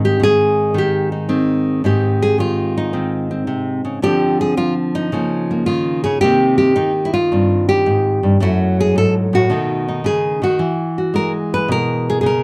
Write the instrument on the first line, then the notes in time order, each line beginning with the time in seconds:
nylon-string guitar
Already playing: G#2 D#3 C4
0.05 G4
0.20 D#3 G#4
0.74 D#3 G4
1.12 D#4
1.29 D#3 C4
1.84 G#2 D#3 C4 G4
2.22 G#4
2.38 D#3 F4
2.78 D#4
2.93 D#3 C4
3.31 C4
3.47 C3
3.85 C#3
4.02 D3 F3 C4 G4
4.41 G#4
4.57 F3 F4
4.95 D#4
5.12 C#3 F3 A#3
5.51 A#3
5.66 D#3 F4
6.04 C#3 G#4
6.21 C3 D#3 A#3 C4 G4
6.58 G4
6.76 D#3 D#4
7.05 E4
7.14 F4
7.32 G2 C4
7.69 G4
7.86 G#2
8.23 G2
8.40 F#2 F#3 A3 E4 F#4
8.80 G#4
8.96 G#2 A4
9.33 A2 F#4
9.50 B2 D#3 A3 D#4
9.88 D#4
10.04 C#3 G#4
10.42 D#3 F#4
10.59 E3
10.98 F#4
11.14 G#3 A#4
11.54 B4
11.68 B2 A#4
12.10 G#4
12.21 C#3 G#4
12.26 A#4